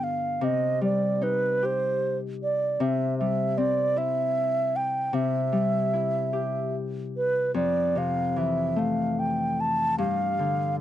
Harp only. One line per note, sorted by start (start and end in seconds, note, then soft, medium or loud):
0.00 0.47 G2 soft
0.00 0.47 D3 soft
0.00 0.47 B3 soft
0.00 1.28 D4 soft
0.41 2.79 C3 medium
0.81 2.86 G3 soft
1.22 3.92 D#4 soft
1.63 3.98 G4 soft
2.80 5.12 C3 medium
3.21 5.20 G3 soft
3.58 6.58 C4 soft
3.96 5.93 E4 soft
5.13 7.61 C3 medium
5.52 7.61 G3 soft
5.93 7.60 E4 soft
6.33 8.68 G4 soft
7.54 10.06 F2 soft
7.95 10.06 C3 soft
8.36 10.06 E3 soft
8.76 10.81 A3 soft
9.98 10.81 G2 medium
10.39 10.81 D3 soft